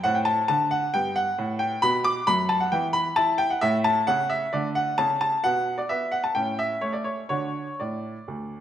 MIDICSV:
0, 0, Header, 1, 2, 480
1, 0, Start_track
1, 0, Key_signature, 2, "major"
1, 0, Tempo, 446097
1, 61, Time_signature, 4, 2, 24, 8
1, 3902, Tempo, 454545
1, 6782, Tempo, 471328
1, 7742, Tempo, 495458
1, 9010, End_track
2, 0, Start_track
2, 0, Title_t, "Grand piano"
2, 0, Program_c, 0, 0
2, 38, Note_on_c, 0, 78, 104
2, 47, Note_on_c, 0, 60, 44
2, 50, Note_on_c, 0, 45, 73
2, 161, Note_on_c, 0, 79, 63
2, 169, Note_off_c, 0, 78, 0
2, 270, Note_on_c, 0, 81, 100
2, 291, Note_off_c, 0, 79, 0
2, 439, Note_off_c, 0, 45, 0
2, 504, Note_off_c, 0, 81, 0
2, 520, Note_on_c, 0, 81, 95
2, 530, Note_on_c, 0, 50, 64
2, 746, Note_off_c, 0, 81, 0
2, 763, Note_on_c, 0, 78, 89
2, 918, Note_off_c, 0, 50, 0
2, 971, Note_off_c, 0, 60, 0
2, 987, Note_off_c, 0, 78, 0
2, 1008, Note_on_c, 0, 79, 91
2, 1017, Note_on_c, 0, 59, 40
2, 1018, Note_on_c, 0, 43, 53
2, 1244, Note_on_c, 0, 78, 94
2, 1253, Note_off_c, 0, 79, 0
2, 1400, Note_off_c, 0, 43, 0
2, 1490, Note_on_c, 0, 45, 63
2, 1712, Note_on_c, 0, 79, 84
2, 1726, Note_off_c, 0, 78, 0
2, 1873, Note_off_c, 0, 45, 0
2, 1927, Note_off_c, 0, 59, 0
2, 1936, Note_off_c, 0, 79, 0
2, 1960, Note_on_c, 0, 83, 116
2, 1968, Note_on_c, 0, 59, 49
2, 1970, Note_on_c, 0, 47, 74
2, 2200, Note_on_c, 0, 86, 108
2, 2205, Note_off_c, 0, 83, 0
2, 2357, Note_off_c, 0, 47, 0
2, 2442, Note_on_c, 0, 83, 111
2, 2448, Note_off_c, 0, 86, 0
2, 2450, Note_on_c, 0, 42, 68
2, 2666, Note_off_c, 0, 83, 0
2, 2680, Note_on_c, 0, 81, 96
2, 2800, Note_on_c, 0, 78, 77
2, 2809, Note_off_c, 0, 81, 0
2, 2838, Note_off_c, 0, 42, 0
2, 2893, Note_off_c, 0, 59, 0
2, 2925, Note_on_c, 0, 79, 82
2, 2929, Note_off_c, 0, 78, 0
2, 2930, Note_on_c, 0, 52, 59
2, 2933, Note_on_c, 0, 59, 43
2, 3073, Note_off_c, 0, 79, 0
2, 3154, Note_on_c, 0, 83, 105
2, 3318, Note_off_c, 0, 52, 0
2, 3401, Note_on_c, 0, 81, 108
2, 3406, Note_off_c, 0, 83, 0
2, 3407, Note_on_c, 0, 64, 63
2, 3625, Note_off_c, 0, 81, 0
2, 3638, Note_on_c, 0, 79, 94
2, 3768, Note_off_c, 0, 79, 0
2, 3770, Note_on_c, 0, 78, 74
2, 3797, Note_off_c, 0, 64, 0
2, 3854, Note_off_c, 0, 59, 0
2, 3888, Note_on_c, 0, 76, 102
2, 3895, Note_off_c, 0, 78, 0
2, 3897, Note_on_c, 0, 57, 47
2, 3900, Note_on_c, 0, 45, 78
2, 4036, Note_off_c, 0, 76, 0
2, 4131, Note_on_c, 0, 81, 106
2, 4284, Note_off_c, 0, 45, 0
2, 4372, Note_on_c, 0, 78, 103
2, 4376, Note_off_c, 0, 81, 0
2, 4382, Note_on_c, 0, 49, 67
2, 4609, Note_on_c, 0, 76, 83
2, 4615, Note_off_c, 0, 78, 0
2, 4764, Note_off_c, 0, 49, 0
2, 4815, Note_off_c, 0, 57, 0
2, 4853, Note_on_c, 0, 74, 82
2, 4854, Note_off_c, 0, 76, 0
2, 4862, Note_on_c, 0, 50, 65
2, 4864, Note_on_c, 0, 57, 43
2, 4999, Note_off_c, 0, 74, 0
2, 5091, Note_on_c, 0, 78, 93
2, 5245, Note_off_c, 0, 50, 0
2, 5330, Note_on_c, 0, 81, 98
2, 5335, Note_off_c, 0, 78, 0
2, 5339, Note_on_c, 0, 49, 63
2, 5556, Note_off_c, 0, 81, 0
2, 5572, Note_on_c, 0, 81, 96
2, 5720, Note_off_c, 0, 49, 0
2, 5776, Note_off_c, 0, 57, 0
2, 5813, Note_off_c, 0, 81, 0
2, 5814, Note_on_c, 0, 78, 102
2, 5821, Note_on_c, 0, 47, 64
2, 5822, Note_on_c, 0, 59, 49
2, 6173, Note_on_c, 0, 74, 68
2, 6175, Note_off_c, 0, 78, 0
2, 6204, Note_off_c, 0, 47, 0
2, 6286, Note_off_c, 0, 59, 0
2, 6295, Note_on_c, 0, 76, 84
2, 6296, Note_off_c, 0, 74, 0
2, 6301, Note_on_c, 0, 59, 61
2, 6514, Note_off_c, 0, 76, 0
2, 6530, Note_on_c, 0, 78, 83
2, 6656, Note_off_c, 0, 78, 0
2, 6658, Note_on_c, 0, 81, 72
2, 6687, Note_off_c, 0, 59, 0
2, 6776, Note_on_c, 0, 79, 80
2, 6780, Note_off_c, 0, 81, 0
2, 6785, Note_on_c, 0, 61, 38
2, 6787, Note_on_c, 0, 45, 53
2, 7013, Note_off_c, 0, 79, 0
2, 7020, Note_on_c, 0, 76, 83
2, 7161, Note_off_c, 0, 45, 0
2, 7231, Note_off_c, 0, 76, 0
2, 7250, Note_on_c, 0, 73, 72
2, 7259, Note_on_c, 0, 57, 53
2, 7368, Note_on_c, 0, 74, 62
2, 7370, Note_off_c, 0, 73, 0
2, 7485, Note_on_c, 0, 73, 67
2, 7491, Note_off_c, 0, 74, 0
2, 7636, Note_off_c, 0, 73, 0
2, 7648, Note_off_c, 0, 57, 0
2, 7702, Note_off_c, 0, 61, 0
2, 7737, Note_on_c, 0, 73, 79
2, 7745, Note_on_c, 0, 50, 48
2, 7747, Note_on_c, 0, 66, 41
2, 7748, Note_on_c, 0, 62, 37
2, 8082, Note_off_c, 0, 50, 0
2, 8132, Note_off_c, 0, 62, 0
2, 8132, Note_off_c, 0, 66, 0
2, 8223, Note_off_c, 0, 73, 0
2, 8227, Note_on_c, 0, 74, 54
2, 8236, Note_on_c, 0, 45, 49
2, 8566, Note_off_c, 0, 45, 0
2, 8695, Note_on_c, 0, 38, 42
2, 9010, Note_off_c, 0, 38, 0
2, 9010, Note_off_c, 0, 74, 0
2, 9010, End_track
0, 0, End_of_file